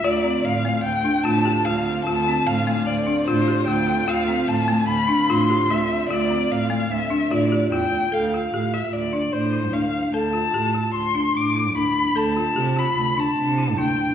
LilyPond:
<<
  \new Staff \with { instrumentName = "Violin" } { \time 5/4 \key d \dorian \tempo 4 = 149 d''4 f''4 g''4 a''4 f''4 | a''4 f''4 d''4 c''4 g''4 | f''4 a''4 b''4 c'''4 e''4 | d''4 f''4 e''4 d''4 g''4 |
f''4. e''8 d''4 c''4 f''4 | a''2 c'''4 d'''4 b''4 | a''4. b''4 a''4. g''4 | }
  \new Staff \with { instrumentName = "Marimba" } { \time 5/4 \key d \dorian f'8 c'4 a4 d'8 f'8 g'8 f'4 | f'8 c'4 a4 d'8 f'8 g'8 f'4 | f'8 c'4 a4 d'8 f'8 g'8 f'4 | f'8 c'4 a4 d'8 f'8 g'8 f'4 |
a'8 f'8 g'8 f'4 d'4 e'8 d'4 | a'8 f'8 g'8 f'4 d'4 e'8 d'4 | a'8 f'8 g'8 f'4 d'4 e'8 d'4 | }
  \new Staff \with { instrumentName = "String section" } { \time 5/4 \key d \dorian <d c' f'>1~ <d c' f'>4~ | <d c' f'>1~ <d c' f'>4~ | <d c' f'>1~ <d c' f'>4~ | <d c' f'>1~ <d c' f'>4 |
r1 r4 | r1 r4 | r1 r4 | }
  \new Staff \with { instrumentName = "Cello" } { \clef bass \time 5/4 \key d \dorian d,4 a,4 d,8 r8 a,4 d,4 | d,4 a,4 d,8 r8 a,4 d,4 | d,4 a,4 d,8 r8 a,4 d,4 | d,4 a,4 d,8 r8 a,4 e,8 d,8 |
d,4 a,4 d,4 a,4 d,4 | d,4 a,4 d,4 a,4 d,4 | d,4 c4 d,4 c4 d,4 | }
>>